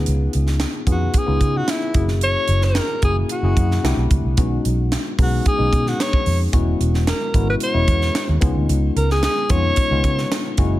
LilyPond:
<<
  \new Staff \with { instrumentName = "Alto saxophone" } { \time 4/4 \key cis \dorian \tempo 4 = 111 r4. fis'8 gis'8. fis'16 e'8. r16 | cis''8. ais'8. gis'8 fis'4. r8 | r4. fis'8 gis'8. fis'16 cis''8. r16 | r4 ais'8. b'16 cis''4. r8 |
r8 ais'16 gis'16 gis'8 cis''2 r8 | }
  \new Staff \with { instrumentName = "Tine electric piano" } { \time 4/4 \key cis \dorian <b cis' dis' eis' gis'>4 r8 <b cis' dis' eis' gis'>8 r16 <b cis' dis' eis' gis'>4 r16 <ais cis' e' fis' gis'>8~ | <ais cis' e' fis' gis'>4 r8 <ais cis' e' fis' gis'>8 r16 <ais cis' e' fis' gis'>8. <a c' d' e' g'>8. r16 | <gis b cis' dis' fis'>4 r8 <gis b cis' dis' gis'>8 r16 <gis b cis' dis' gis'>4 r8. | <gis b cis' e' fis'>4 r8 <gis b cis' e' fis'>8 r16 <gis b cis' e' gis'>4 r16 <gis b cis' dis' eis'>8~ |
<gis b cis' dis' eis'>4 r8 <gis b cis' dis' eis'>8 r16 <gis b cis' dis' eis'>4 r16 <gis ais cis' e' fis'>8 | }
  \new Staff \with { instrumentName = "Fingered electric bass" } { \clef bass \time 4/4 \key cis \dorian cis,8 cis,8. r16 eis,8 r16 cis,16 cis8 r8 fis,,8~ | fis,,8 fis,,8. r16 fis,,8 r16 fis,,16 fis,8 c,16 b,,16 cis,16 c,16 | b,,8 b,,8. r16 b,,8 r16 b,,16 b,8 r8 eis,8 | e,,8 e,,8. r16 gis,,8 r16 e,,16 e,8 r16 dis,16 cis,16 d,16 |
cis,8 cis,8. r16 eis,8 r16 cis,16 cis8 r8 fis,,8 | }
  \new DrumStaff \with { instrumentName = "Drums" } \drummode { \time 4/4 hh8 hh16 sn16 <hh sn>8 <hh bd>8 <hh bd>8 <hh bd>8 <hh sn>8 <hh bd>16 sn16 | hh8 hh16 sn16 <hh sn>8 <hh bd>8 hh8 <hh bd>16 sn16 <hh sn>8 <hh bd>8 | <hh bd>8 hh8 <hh sn>8 <hho bd>8 <hh bd>8 <hh bd>16 sn16 <hh sn>16 bd16 hho8 | <hh bd>8 hh16 sn16 <hh sn>8 <hh bd>8 hh8 <hh bd>16 sn16 <hh sn>8 <hh bd>8 |
hh8 hh16 sn16 <hh sn>8 <hh bd>8 <hh bd>8 <hh bd>16 sn16 <hh sn>8 <hh bd>8 | }
>>